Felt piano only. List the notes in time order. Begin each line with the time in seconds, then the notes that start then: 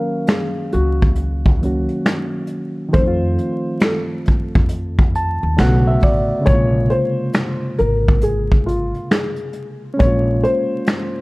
Already playing: A#4
0.28 G#4
0.73 F#4
2.93 C5
3.82 A4
6.46 C#5
6.90 C5
7.79 A#4
8.23 G#4
8.66 F4
9.11 G#4
9.99 C#5
10.43 C5